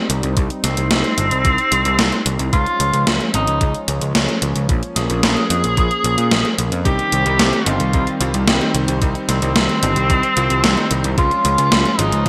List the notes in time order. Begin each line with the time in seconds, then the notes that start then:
Already playing: G3 C4 D#4
0.10 C2, closed hi-hat
0.23 C2, closed hi-hat
0.37 C2, kick, closed hi-hat
0.50 closed hi-hat
0.64 C2 C4, snare, closed hi-hat
0.77 C2, closed hi-hat
0.91 C2, snare, closed hi-hat
1.04 closed hi-hat
1.18 G1, closed hi-hat
1.31 C2, closed hi-hat
1.45 C2, kick, closed hi-hat
1.58 closed hi-hat
1.72 C2, closed hi-hat
1.85 C2, closed hi-hat
1.99 C2, snare, closed hi-hat
2.12 closed hi-hat
2.26 C2, closed hi-hat
2.39 C2, closed hi-hat
2.53 C#2 F3 G#3 C#4 F4, kick, closed hi-hat
2.66 closed hi-hat
2.80 C#2, closed hi-hat
2.93 C#2, closed hi-hat
3.07 C#2, snare, closed hi-hat
3.21 closed hi-hat
3.34 G#1 D#4, closed hi-hat
3.47 C#2, closed hi-hat
3.61 C#2, kick, closed hi-hat
3.75 closed hi-hat
3.88 C#2, closed hi-hat
4.01 C#2, closed hi-hat
4.15 C#2, snare, closed hi-hat
4.29 closed hi-hat
4.42 C#2, closed hi-hat
4.56 C#2, closed hi-hat
4.69 A#1 A#3, kick, closed hi-hat
4.83 closed hi-hat
4.96 A#1 G#4, snare, closed hi-hat
5.10 A#1, closed hi-hat
5.23 A#1, snare, closed hi-hat
5.37 closed hi-hat
5.50 F2, closed hi-hat
5.64 A#1, closed hi-hat
5.77 A#1, kick, closed hi-hat
5.91 closed hi-hat
6.04 A#1, closed hi-hat
6.18 A#2, closed hi-hat
6.31 A#1, snare, closed hi-hat
6.45 closed hi-hat
6.58 A#1, closed hi-hat
6.72 F2, closed hi-hat
6.85 C2 D#3 G3 C4 D#4 G4, kick, closed hi-hat
6.99 closed hi-hat
7.12 C2, closed hi-hat
7.26 C2 G3 C4 D#4, closed hi-hat
7.39 C2, snare, closed hi-hat
7.53 closed hi-hat
7.66 G1 G3 C4 D#4 F4, closed hi-hat
7.80 C2, closed hi-hat
7.93 C2 G3 C4 D#4, kick, closed hi-hat
8.07 closed hi-hat
8.20 C2 G3 C4 F4, closed hi-hat
8.34 C2, closed hi-hat
8.48 C2, snare, closed hi-hat
8.61 G3 C4 D#4, closed hi-hat
8.75 C2, closed hi-hat
8.88 C2, closed hi-hat
9.02 C2 G3 C4 D#4, kick, closed hi-hat
9.15 closed hi-hat
9.29 C2 C4, snare, closed hi-hat
9.42 C2 G3 C4 D#4, closed hi-hat
9.56 C2, snare, closed hi-hat
9.69 closed hi-hat
9.83 G1 G3 C4 D#4, closed hi-hat
9.96 C2, closed hi-hat
10.10 C2 G3 C4 D#4, kick, closed hi-hat
10.23 closed hi-hat
10.37 C2 G3 C4 F4, closed hi-hat
10.50 C2, closed hi-hat
10.64 C2, snare, closed hi-hat
10.77 G3 C4 D#4, closed hi-hat
10.91 C2, closed hi-hat
11.04 C2, closed hi-hat
11.18 C#2 F3 G#3 C#4 F4, kick, closed hi-hat
11.31 closed hi-hat
11.45 C#2, closed hi-hat
11.58 C#2 G#3 C#4 F4, closed hi-hat
11.72 C#2, snare, closed hi-hat
11.85 closed hi-hat
11.99 G#1 G#3 C#4 D#4 F4, closed hi-hat
12.12 C#2, closed hi-hat